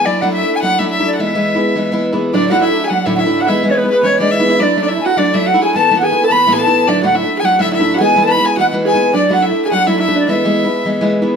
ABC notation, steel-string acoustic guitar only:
X:1
M:4/4
L:1/16
Q:"Swing" 1/4=211
K:Dlyd
V:1 name="Steel-string acoustic guitar"
[F,A,DE]2 [F,A,DE]3 [A,DE]3 [F,A,DE]2 [F,A,DE]3 [F,A,DE]3 | [E,G,B,E]2 [E,G,B,E]3 [G,B,E]3 [E,G,B,E]2 [E,G,B,E]3 [E,G,B,E]3 | [D,,A,,F,A,DE]2 [D,,A,,F,A,DE]3 [F,A,DE]3 [F,A,DE]2 [D,,A,,F,A,DE]3 [D,,A,,F,A,DE]3 | [E,G,B,E]2 [E,G,B,E]3 [G,B,E]3 [E,G,B,E]2 [E,G,B,E]3 [E,G,B,E]3 |
[F,A,DE]2 [F,A,DE]3 [A,DE]3 [F,A,DE]2 [F,A,DE]3 [F,A,DE]3 | [A,,E,A,B,E]2 [A,,E,A,B,E]3 [A,B,E]3 [E,A,B,E]2 [A,,E,A,B,E]3 [A,,E,A,B,E]3 | [D,,A,,F,A,DE]2 [D,,A,,F,A,DE]3 [F,A,DE]3 [F,A,DE]2 [D,,A,,F,A,DE]3 [D,,A,,F,A,DE]3 | [E,G,B,E]2 [E,G,B,E]3 [G,B,E]3 [E,G,B,E]2 [E,G,B,E]3 [E,G,B,E]3 |
[F,A,DE]2 [F,A,DE]3 [A,DE]3 [F,A,DE]2 [F,A,DE]3 [F,A,DE]3 | [E,G,B,E]2 [E,G,B,E]3 [G,B,E]3 [E,G,B,E]2 [E,G,B,E]3 [E,G,B,E]3 |]